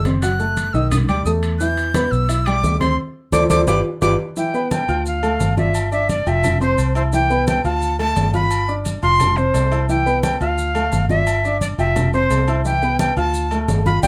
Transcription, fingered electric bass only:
0, 0, Header, 1, 2, 480
1, 0, Start_track
1, 0, Tempo, 345026
1, 312, Time_signature, 4, 2, 24, 8
1, 19578, End_track
2, 0, Start_track
2, 0, Title_t, "Fingered electric bass"
2, 0, Program_c, 0, 33
2, 0, Note_on_c, 0, 30, 87
2, 952, Note_off_c, 0, 30, 0
2, 1029, Note_on_c, 0, 35, 91
2, 1478, Note_off_c, 0, 35, 0
2, 1512, Note_on_c, 0, 38, 71
2, 1736, Note_off_c, 0, 38, 0
2, 1745, Note_on_c, 0, 40, 95
2, 2870, Note_off_c, 0, 40, 0
2, 2948, Note_on_c, 0, 35, 98
2, 3620, Note_off_c, 0, 35, 0
2, 3671, Note_on_c, 0, 38, 97
2, 4119, Note_off_c, 0, 38, 0
2, 4629, Note_on_c, 0, 38, 91
2, 4810, Note_off_c, 0, 38, 0
2, 4875, Note_on_c, 0, 38, 102
2, 5053, Note_off_c, 0, 38, 0
2, 5112, Note_on_c, 0, 31, 96
2, 5292, Note_off_c, 0, 31, 0
2, 5591, Note_on_c, 0, 31, 101
2, 5771, Note_off_c, 0, 31, 0
2, 6797, Note_on_c, 0, 38, 101
2, 7465, Note_off_c, 0, 38, 0
2, 7516, Note_on_c, 0, 31, 91
2, 8636, Note_off_c, 0, 31, 0
2, 8719, Note_on_c, 0, 29, 102
2, 9387, Note_off_c, 0, 29, 0
2, 9435, Note_on_c, 0, 36, 105
2, 10557, Note_off_c, 0, 36, 0
2, 10635, Note_on_c, 0, 38, 95
2, 11306, Note_off_c, 0, 38, 0
2, 11361, Note_on_c, 0, 31, 94
2, 12480, Note_off_c, 0, 31, 0
2, 12561, Note_on_c, 0, 29, 97
2, 13230, Note_off_c, 0, 29, 0
2, 13279, Note_on_c, 0, 36, 92
2, 14400, Note_off_c, 0, 36, 0
2, 14478, Note_on_c, 0, 38, 102
2, 15148, Note_off_c, 0, 38, 0
2, 15194, Note_on_c, 0, 31, 101
2, 16317, Note_off_c, 0, 31, 0
2, 16392, Note_on_c, 0, 29, 99
2, 17065, Note_off_c, 0, 29, 0
2, 17115, Note_on_c, 0, 36, 94
2, 18236, Note_off_c, 0, 36, 0
2, 18320, Note_on_c, 0, 38, 103
2, 18988, Note_off_c, 0, 38, 0
2, 19033, Note_on_c, 0, 31, 100
2, 19481, Note_off_c, 0, 31, 0
2, 19516, Note_on_c, 0, 31, 97
2, 19578, Note_off_c, 0, 31, 0
2, 19578, End_track
0, 0, End_of_file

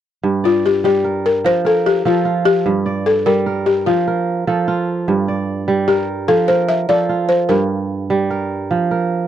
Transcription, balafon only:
0, 0, Header, 1, 2, 480
1, 0, Start_track
1, 0, Key_signature, -2, "minor"
1, 0, Tempo, 403497
1, 284, Time_signature, 12, 3, 24, 8
1, 11034, End_track
2, 0, Start_track
2, 0, Title_t, "Balafon"
2, 0, Program_c, 0, 12
2, 538, Note_on_c, 0, 65, 74
2, 777, Note_off_c, 0, 65, 0
2, 781, Note_on_c, 0, 67, 77
2, 995, Note_off_c, 0, 67, 0
2, 1012, Note_on_c, 0, 67, 78
2, 1497, Note_on_c, 0, 70, 75
2, 1501, Note_off_c, 0, 67, 0
2, 1735, Note_on_c, 0, 72, 88
2, 1736, Note_off_c, 0, 70, 0
2, 1975, Note_off_c, 0, 72, 0
2, 1981, Note_on_c, 0, 69, 76
2, 2084, Note_off_c, 0, 69, 0
2, 2217, Note_on_c, 0, 67, 78
2, 2455, Note_off_c, 0, 67, 0
2, 2459, Note_on_c, 0, 65, 72
2, 2920, Note_on_c, 0, 67, 82
2, 2943, Note_off_c, 0, 65, 0
2, 3643, Note_on_c, 0, 69, 77
2, 3660, Note_off_c, 0, 67, 0
2, 3879, Note_on_c, 0, 70, 76
2, 3888, Note_off_c, 0, 69, 0
2, 4356, Note_on_c, 0, 67, 68
2, 4373, Note_off_c, 0, 70, 0
2, 4465, Note_off_c, 0, 67, 0
2, 4597, Note_on_c, 0, 65, 68
2, 5510, Note_off_c, 0, 65, 0
2, 6993, Note_on_c, 0, 67, 76
2, 7474, Note_on_c, 0, 69, 81
2, 7490, Note_off_c, 0, 67, 0
2, 7583, Note_off_c, 0, 69, 0
2, 7709, Note_on_c, 0, 72, 85
2, 7937, Note_off_c, 0, 72, 0
2, 7954, Note_on_c, 0, 76, 83
2, 8063, Note_off_c, 0, 76, 0
2, 8195, Note_on_c, 0, 74, 80
2, 8668, Note_on_c, 0, 72, 82
2, 8692, Note_off_c, 0, 74, 0
2, 8779, Note_off_c, 0, 72, 0
2, 8907, Note_on_c, 0, 70, 69
2, 10308, Note_off_c, 0, 70, 0
2, 11034, End_track
0, 0, End_of_file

